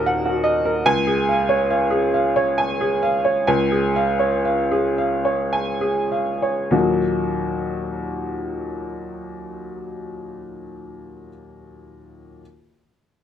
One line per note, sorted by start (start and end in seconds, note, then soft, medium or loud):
0.00 0.82 D#1 medium
0.00 0.83 D#2 medium
0.00 0.89 D#4 medium
0.00 0.26 F#4 medium
0.00 0.65 A#4 medium
0.00 0.44 D#5 medium
0.00 0.06 F#5 medium
0.06 0.38 F#5 medium
0.26 0.58 F#4 medium
0.44 0.77 D#5 medium
0.65 0.86 A#4 medium
0.86 3.44 C#2 medium
0.86 1.19 G#5 loud
1.07 1.41 G#4 medium
1.29 1.63 F5 medium
1.49 1.84 C#5 medium
1.70 2.05 F5 medium
1.90 2.26 G#4 medium
2.14 2.49 F5 medium
2.36 2.71 C#5 medium
2.58 2.93 G#5 medium
2.81 3.16 G#4 medium
3.03 3.39 F5 medium
3.25 3.62 C#5 medium
3.47 6.69 C#2 medium
3.47 3.86 G#5 medium
3.72 4.10 G#4 medium
3.96 4.35 F5 medium
4.19 4.60 C#5 medium
4.45 4.87 F5 medium
4.71 5.14 G#4 medium
4.98 5.42 F5 medium
5.25 5.70 C#5 medium
5.53 6.00 G#5 medium
5.81 6.31 G#4 medium
6.12 6.61 F5 medium
6.42 6.72 C#5 medium
6.71 11.28 D#2 medium
6.71 11.29 A#2 medium
6.71 11.29 F#3 medium
6.71 11.29 A#3 medium
6.71 11.29 D#4 medium
6.71 11.30 F#4 medium